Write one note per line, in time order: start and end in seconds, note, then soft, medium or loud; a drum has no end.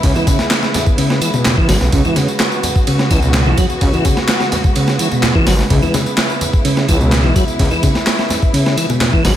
0.00 0.11 C#2 loud
0.00 9.37 C#3 medium
0.00 0.14 C#3 medium
0.00 9.37 G#3 medium
0.00 9.37 B3 medium
0.00 1.91 E4 medium
0.00 kick loud
0.00 ride medium
0.00 tambourine soft
0.15 0.27 E3 loud
0.15 tambourine soft
0.15 low conga medium
0.27 0.38 C#3 medium
0.27 kick loud
0.27 ride medium
0.27 tambourine medium
0.27 muted conga medium
0.27 high conga loud
0.39 snare medium
0.39 tambourine soft
0.51 snare loud
0.51 clap loud
0.51 ride medium
0.51 tambourine soft
0.63 snare medium
0.63 tambourine soft
0.74 snare soft
0.74 ride medium
0.74 tambourine medium
0.74 muted conga medium
0.74 low conga medium
0.86 kick loud
0.86 tambourine soft
0.98 1.20 C#3 loud
0.98 ride medium
0.98 tambourine soft
1.10 snare medium
1.10 tambourine soft
1.21 1.30 E3 medium
1.21 ride medium
1.21 tambourine medium
1.34 1.56 B2 medium
1.34 tambourine soft
1.34 muted conga medium
1.45 snare loud
1.45 clap loud
1.45 ride medium
1.45 tambourine soft
1.45 low conga medium
1.57 1.68 E3 loud
1.57 kick loud
1.69 1.77 G#1 medium
1.69 1.78 F#3 loud
1.69 snare medium
1.69 open hi-hat medium
1.69 tambourine medium
1.69 high conga loud
1.81 1.89 B1 medium
1.81 snare soft
1.81 tambourine soft
1.92 2.01 C#2 loud
1.92 2.04 C#3 medium
1.92 5.69 F#4 medium
1.92 kick loud
1.92 ride medium
1.92 tambourine soft
2.05 2.16 E3 loud
2.05 tambourine soft
2.05 low conga medium
2.16 2.28 C#3 medium
2.16 snare soft
2.16 ride medium
2.16 tambourine medium
2.16 high conga medium
2.28 tambourine soft
2.40 snare loud
2.40 clap loud
2.40 ride medium
2.40 tambourine soft
2.52 tambourine soft
2.63 ride medium
2.63 tambourine medium
2.63 muted conga soft
2.63 low conga medium
2.76 kick loud
2.76 tambourine soft
2.87 3.10 C#3 loud
2.87 ride medium
2.87 tambourine soft
2.99 snare medium
2.99 tambourine soft
3.11 3.48 C#2 medium
3.11 3.19 E3 medium
3.11 kick loud
3.11 ride medium
3.11 tambourine medium
3.22 3.45 B2 medium
3.22 tambourine soft
3.34 snare loud
3.34 clap loud
3.34 ride medium
3.34 tambourine soft
3.46 3.54 B1 medium
3.46 3.57 E3 loud
3.46 high conga medium
3.57 3.66 F#3 loud
3.57 kick loud
3.57 ride medium
3.57 tambourine medium
3.57 low conga medium
3.70 tambourine soft
3.81 3.89 C#2 loud
3.81 3.92 C#3 medium
3.81 kick loud
3.81 ride medium
3.81 tambourine soft
3.93 4.04 E3 loud
3.93 tambourine soft
3.93 low conga medium
4.05 4.16 C#3 medium
4.05 kick loud
4.05 ride medium
4.05 tambourine medium
4.05 muted conga medium
4.05 high conga medium
4.17 snare medium
4.17 tambourine soft
4.28 snare loud
4.28 clap loud
4.28 ride medium
4.28 tambourine soft
4.40 snare medium
4.40 tambourine soft
4.52 snare soft
4.52 ride medium
4.52 tambourine medium
4.52 muted conga soft
4.52 low conga medium
4.64 kick loud
4.64 tambourine soft
4.64 high conga medium
4.75 4.98 C#3 loud
4.75 ride medium
4.75 tambourine soft
4.88 snare medium
4.88 tambourine soft
4.99 5.08 E3 medium
4.99 ride medium
4.99 tambourine medium
5.12 5.34 B2 medium
5.12 tambourine soft
5.12 muted conga medium
5.23 snare loud
5.23 clap loud
5.23 ride medium
5.23 tambourine soft
5.23 low conga medium
5.35 5.46 E3 loud
5.35 kick loud
5.46 5.63 G#1 medium
5.46 5.56 F#3 loud
5.46 snare medium
5.46 open hi-hat medium
5.46 tambourine medium
5.46 high conga medium
5.59 snare soft
5.59 tambourine soft
5.70 5.78 C#2 loud
5.70 5.81 C#3 medium
5.70 9.37 E4 medium
5.70 kick loud
5.70 ride medium
5.70 tambourine soft
5.82 5.93 E3 loud
5.82 tambourine soft
5.82 low conga medium
5.94 6.06 C#3 medium
5.94 snare soft
5.94 ride medium
5.94 tambourine medium
5.94 high conga loud
6.06 tambourine soft
6.17 snare loud
6.17 clap loud
6.17 ride medium
6.17 tambourine soft
6.30 tambourine soft
6.41 ride medium
6.41 tambourine medium
6.41 muted conga medium
6.41 low conga medium
6.53 kick loud
6.53 tambourine soft
6.65 6.87 C#3 loud
6.65 ride medium
6.65 tambourine soft
6.77 snare medium
6.77 tambourine soft
6.88 7.26 C#2 medium
6.88 6.97 E3 medium
6.88 kick medium
6.88 ride medium
6.88 tambourine medium
7.00 7.23 B2 medium
7.00 tambourine soft
7.12 snare loud
7.12 clap loud
7.12 ride medium
7.12 tambourine soft
7.24 7.32 B1 medium
7.24 7.34 E3 loud
7.24 high conga medium
7.36 7.44 F#3 loud
7.36 kick loud
7.36 ride medium
7.36 tambourine medium
7.36 low conga medium
7.48 tambourine soft
7.59 7.67 C#2 loud
7.59 7.70 C#3 medium
7.59 kick loud
7.59 ride medium
7.59 tambourine soft
7.71 7.82 E3 loud
7.71 tambourine soft
7.71 low conga medium
7.83 7.94 C#3 medium
7.83 kick loud
7.83 ride medium
7.83 tambourine medium
7.83 muted conga medium
7.83 high conga medium
7.95 snare medium
7.95 tambourine soft
8.07 snare loud
8.07 clap loud
8.07 ride medium
8.07 tambourine soft
8.19 snare medium
8.19 tambourine soft
8.29 snare soft
8.29 ride medium
8.29 tambourine medium
8.29 muted conga soft
8.29 low conga medium
8.42 kick loud
8.42 tambourine soft
8.53 8.76 C#3 loud
8.53 ride medium
8.53 tambourine soft
8.66 snare medium
8.66 tambourine soft
8.77 8.86 E3 medium
8.77 ride medium
8.77 tambourine medium
8.89 9.12 B2 medium
8.89 tambourine soft
8.89 muted conga medium
9.00 snare loud
9.00 clap loud
9.00 ride medium
9.00 tambourine soft
9.00 low conga medium
9.13 9.23 E3 loud
9.13 kick loud
9.24 9.33 G#1 medium
9.24 9.33 F#3 loud
9.24 snare medium
9.24 open hi-hat medium
9.24 tambourine medium
9.24 high conga loud